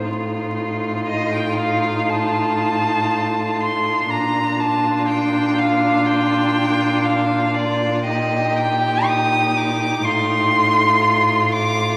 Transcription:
<<
  \new Staff \with { instrumentName = "Violin" } { \time 4/4 \key bes \major \tempo 4 = 60 r4 ees''16 g''16 f''8 a''4. c'''8 | bes''8 a''8 g''8 f''8 g''4 f''8 d''8 | ees''8 g''8 ees'''8 d'''8 c'''4. d'''8 | }
  \new Staff \with { instrumentName = "Violin" } { \time 4/4 \key bes \major f'1 | f'1 | g'2 f'2 | }
  \new Staff \with { instrumentName = "Viola" } { \time 4/4 \key bes \major ees'1 | d'1 | ees'1 | }
  \new Staff \with { instrumentName = "Cello" } { \clef bass \time 4/4 \key bes \major a,1 | bes,1~ | bes,2 a,2 | }
>>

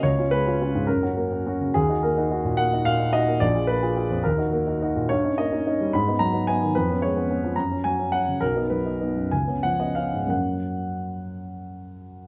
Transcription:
\new Staff \with { instrumentName = "Grand piano" } { \time 6/8 \key fis \major \tempo 4. = 71 << { cis''8 b'4 ais'4. | gis'8 ais'4 fis''8 eis''8 dis''8 | d''8 b'4 ais'4. | cis''8 dis''4 b''8 ais''8 gis''8 |
b'8 cis''4 ais''8 gis''8 fis''8 | ais'8 b'4 gis''8 fis''16 dis''16 eis''8 | fis''2~ fis''8 r8 | } \\ { cis,16 <cis' eis'>16 gis16 <cis' eis'>16 <cis' eis'>16 gis,16 fis,16 <cis' fis'>16 ais16 <cis' fis'>16 <cis' fis'>16 cis16 | dis,16 <dis' fis'>16 ais16 <dis' fis'>16 <dis' fis'>16 ais,16 ais16 <dis' fis'>16 ais,16 <dis' fis'>16 <dis' fis'>16 ais16 | ais,,16 <eis' gis'>16 ais16 <eis' gis'>16 <eis' gis'>16 eis,16 dis,16 <dis' fis'>16 ais16 <dis' fis'>16 <dis' fis'>16 ais,16 | g,16 <cis' dis'>16 ais16 <cis' dis'>16 <cis' dis'>16 g16 gis,16 <b dis'>16 fis16 <b dis'>16 <b dis'>16 dis16 |
eis,16 <b cis'>16 gis16 <b cis'>16 <b cis'>16 eis16 fis,16 cis'16 fis16 cis'16 cis'16 cis16 | b,,16 <b dis'>16 fis16 <b dis'>16 <b dis'>16 fis,16 cis,16 <b cis'>16 eis16 <b cis'>16 <b cis'>16 gis,16 | <fis, fis ais cis'>2. | } >> }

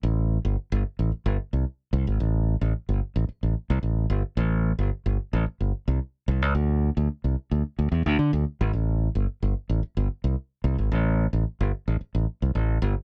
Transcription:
\new Staff \with { instrumentName = "Fingered electric bass" } { \clef bass \time 4/4 \key a \minor \tempo 4 = 110 a,,8. g,,16 r16 g,,16 r16 a,,16 r16 g,,16 r16 c,16 r8 c,16 gis,,16 | a,,8. a,,16 r16 g,,16 r16 a,,16 r16 a,,16 r16 c,16 a,,8 g,,16 r16 | a,,8. g,,16 r16 g,,16 r16 a,,16 r16 g,,16 r16 c,16 r8 c,16 cis,16 | d,8. d,16 r16 c,16 r16 d,16 r16 d,16 e,16 d,16 d16 d,16 r16 gis,,16 |
a,,8. g,,16 r16 g,,16 r16 a,,16 r16 g,,16 r16 c,16 r8 c,16 gis,,16 | a,,8. a,,16 r16 g,,16 r16 a,,16 r16 a,,16 r16 c,16 a,,8 g,,16 r16 | }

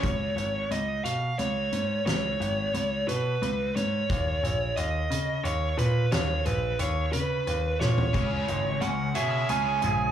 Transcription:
<<
  \new Staff \with { instrumentName = "Lead electric guitar" } { \time 6/8 \key cis \dorian \tempo 4. = 59 cis''4 dis''8 eis''8 cis''4 | cis''4. b'4 cis''8~ | cis''4 dis''4 cis''8 b'8 | cis''8 b'8 cis''8 b'4 cis''8~ |
cis''4 fis''8 e''8 gis''4 | }
  \new Staff \with { instrumentName = "Clean electric guitar" } { \time 6/8 \key cis \dorian r2. | r2. | r2. | r2. |
cis8 gis8 cis'8 gis'8 cis'8 gis'8 | }
  \new Staff \with { instrumentName = "Distorted electric guitar" } { \clef bass \time 6/8 \key cis \dorian r2. | r2. | r2. | r2. |
<cis gis cis'>8 <cis gis>8 <cis gis>8 <cis gis cis'>4 <cis gis>8 | }
  \new Staff \with { instrumentName = "Grand piano" } { \clef bass \time 6/8 \key cis \dorian cis,8 gis,,8 cis,8 b,8 cis,8 gis,8 | cis,8 gis,,8 cis,8 b,8 cis,8 gis,8 | dis,8 ais,,8 dis,8 cis8 dis,8 ais,8 | dis,8 ais,,8 dis,8 cis8 dis,8 ais,8 |
cis,8 gis,,8 cis,8 b,8 cis,8 ais,,8 | }
  \new DrumStaff \with { instrumentName = "Drums" } \drummode { \time 6/8 <hh bd>8 hh8 hh8 hh8 hh8 hh8 | <hh sn>8 hh8 hh8 hh8 hh8 hh8 | <hh bd>8 hh8 hh8 hh8 hh8 hh8 | <hh sn>8 hh8 hh8 hh8 hh8 sn16 tomfh16 |
<hh bd>8 hh8 hh8 hh8 hh8 hh8 | }
>>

